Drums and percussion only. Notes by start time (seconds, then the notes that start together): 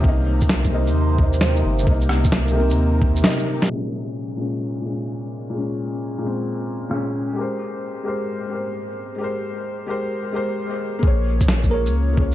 0.04 kick
0.41 kick, shaker
0.49 snare
0.64 kick, shaker
0.87 shaker
1.18 kick
1.33 shaker
1.41 snare
1.56 shaker
1.79 shaker
1.87 kick
2.01 shaker
2.09 cross-stick
2.24 kick, shaker
2.32 snare
2.48 shaker
2.70 shaker
3.02 kick
3.16 shaker
3.24 snare
3.39 shaker
3.62 snare, shaker
6.91 cross-stick
11.03 kick
11.41 kick, shaker
11.48 snare
11.63 kick, shaker
11.86 shaker
12.17 kick